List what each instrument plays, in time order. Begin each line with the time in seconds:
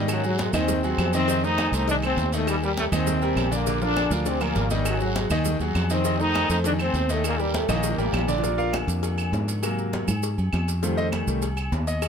Already playing: fingered electric bass G#2, grand piano D#3 D#4 D#5
0.08 trombone section F#2 F#3, cowbell, high conga, low agogo, long guiro, claves, maracas
0.24 trombone section F#2 F#3, grand piano F#3 F#4 G#4, high conga, maracas
0.38 trombone section G#2 G#3, cowbell, high conga, low agogo, short guiro, maracas
0.53 fingered electric bass D#2, trombone section C3 C4, grand piano D#3 D#4 D#5, low conga, low agogo, short guiro, claves, maracas
0.68 cowbell, high conga, low conga, maracas
0.84 grand piano F#3 F#4 G#4, high conga, low agogo, maracas
0.98 fingered electric bass F2, cowbell, high conga, low timbale, low agogo, short guiro, claves, maracas
1.13 trombone section C3 C4, grand piano D#3 D#4 D#5, cowbell, high conga, short guiro, maracas
1.28 grand piano D#3 D#4 D#5, cowbell, high conga, low agogo, long guiro, maracas
1.44 trombone section D#3 D#4, grand piano A3 A4 C5, high conga, maracas
1.58 cowbell, high conga, low agogo, short guiro, claves, maracas
1.72 fingered electric bass C2, trombone section D#3 D#4, grand piano A3 A4 C5, cowbell, high conga, short guiro, maracas
1.88 trombone section D3 D4, grand piano D#3 D#4 D#5, cowbell, high conga, low agogo, maracas
2.02 trombone section C3 C4, grand piano A3 A4 C5, high conga, low agogo, claves, maracas
2.17 fingered electric bass D#2, cowbell, high conga, low timbale, short guiro, maracas
2.32 trombone section A2 A3, grand piano D#3 D#4 D#5, cowbell, low agogo, short guiro, maracas
2.47 trombone section G2 G3, cowbell, high conga, low agogo, long guiro, claves, maracas
2.63 trombone section G2 G3, grand piano G3 G4 A#4, high conga, maracas
2.77 trombone section A2 A3, cowbell, high conga, low agogo, short guiro, maracas
2.92 fingered electric bass D#2, trombone section C3 C4, grand piano D#3 D#4 D#5, low conga, low agogo, short guiro, claves, maracas
3.07 cowbell, high conga, low conga, long guiro, maracas
3.22 grand piano G3 G4 A#4, high conga, low agogo, maracas
3.36 fingered electric bass A#1, cowbell, high conga, low timbale, low agogo, short guiro, claves, maracas
3.51 trombone section A#2 A#3, grand piano D3 D4 D5, cowbell, short guiro, maracas
3.67 grand piano D3 D4 D5, cowbell, high conga, low agogo, long guiro, maracas
3.81 trombone section D3 D4, grand piano F3 F4 A#4, high conga, maracas
3.96 cowbell, high conga, low agogo, short guiro, claves, maracas
4.10 fingered electric bass D2, trombone section D3 D4, grand piano F3 F4 A#4, cowbell, short guiro, maracas
4.26 trombone section C3 C4, grand piano D3 D4 D5, cowbell, high conga, low agogo, long guiro, maracas
4.41 trombone section A#2 A#3, grand piano F3 F4 A#4, high conga, low agogo, claves, maracas
4.55 fingered electric bass G#1, cowbell, high conga, low timbale, short guiro, maracas
4.70 trombone section G2 G3, grand piano D#3 D#4 D#5, cowbell, high conga, low agogo, short guiro, maracas
4.85 trombone section F#2 F#3, cowbell, low agogo, long guiro, claves, maracas
5.00 trombone section F#2 F#3, grand piano F#3 F#4 G#4, high conga, maracas
5.15 trombone section G#2 G#3, cowbell, high conga, low agogo, short guiro, maracas
5.30 fingered electric bass D#2, grand piano D#3 D#4 D#5, low conga, low agogo, short guiro, claves, maracas
5.45 cowbell, high conga, low conga, maracas
5.60 fingered electric bass D#2, grand piano F#3 F#4 G#4, high conga, low agogo, maracas
5.75 fingered electric bass F2, cowbell, high conga, low timbale, low agogo, short guiro, claves, maracas
5.90 trombone section C3 C4, grand piano D#3 D#4 D#5, cowbell, high conga, short guiro, maracas
6.05 grand piano D#3 D#4 D#5, cowbell, low agogo, long guiro, maracas
6.20 trombone section D#3 D#4, grand piano A3 A4 C5, high conga, maracas
6.34 cowbell, high conga, low agogo, short guiro, claves, maracas
6.49 fingered electric bass F2, trombone section D#3 D#4, grand piano A3 A4 C5, cowbell, short guiro, maracas
6.64 trombone section D3 D4, grand piano D#3 D#4 D#5, cowbell, high conga, low agogo, long guiro, maracas
6.79 trombone section C3 C4, grand piano A3 A4 C5, high conga, low agogo, claves, maracas
6.94 fingered electric bass D#2, cowbell, high conga, short guiro, maracas
7.09 trombone section A2 A3, grand piano D#3 D#4 D#5, cowbell, low agogo, short guiro, maracas
7.24 trombone section A#2 A#3, cowbell, low agogo, long guiro, claves, maracas
7.39 trombone section G2 G3, grand piano G3 G4 A#4, high conga, maracas
7.54 trombone section A2 A3, cowbell, high conga, low agogo, short guiro, maracas
7.69 fingered electric bass A#1, trombone section A#2 A#3, grand piano D#3 D#4 D#5, high bongo, low conga, high timbale, low agogo, short guiro, claves, maracas
7.83 cowbell, high conga, long guiro, maracas
7.89 low bongo
7.98 fingered electric bass A1, grand piano G3 G4 A#4, high conga, low timbale, low agogo, maracas
8.13 fingered electric bass A#1, cowbell, high conga, low timbale, low agogo, short guiro, claves, maracas
8.19 low bongo
8.28 grand piano D3 D4 D5, cowbell, low timbale, short guiro, maracas
8.38 grand piano D3, low bongo
8.42 grand piano F3 A#3 D4 F4 A#4 D5, cowbell, high conga, low agogo, maracas
8.58 grand piano F4 A#4 D5 F5, high conga, maracas
8.73 cowbell, high conga, low agogo, claves, maracas
8.87 fingered electric bass F2, cowbell, maracas
9.03 cowbell, high conga, low agogo, maracas
9.18 high conga, low agogo, claves, maracas
9.32 fingered electric bass G#2, cowbell, high conga, low timbale, maracas
9.48 cowbell, low agogo, maracas
9.63 grand piano C3 F#3 A#3, cowbell, high conga, low agogo, claves, maracas
9.78 high conga, maracas
9.93 cowbell, high conga, low agogo, maracas
10.08 fingered electric bass G#2, low conga, low agogo, claves, maracas
10.23 cowbell, high conga, maracas
10.38 fingered electric bass F#2, high conga, low agogo, maracas
10.53 fingered electric bass F2, cowbell, high conga, low agogo, claves, maracas
10.68 cowbell, high conga, maracas
10.82 grand piano D#3 G3 A3 C4 F4 A4 C5, cowbell, high conga, low agogo, maracas
10.97 grand piano D#4 A4 C5 D#5, high conga, maracas
11.12 cowbell, high conga, low agogo, claves, maracas
11.27 fingered electric bass C2, grand piano D#3 G3 A3, cowbell, maracas
11.42 cowbell, high conga, low agogo, maracas
11.57 high conga, low agogo, claves, maracas
11.72 fingered electric bass D#2, cowbell, high conga, low timbale, maracas
11.87 grand piano D#5, cowbell, low agogo, maracas
12.02 cowbell, high conga, low agogo, claves, maracas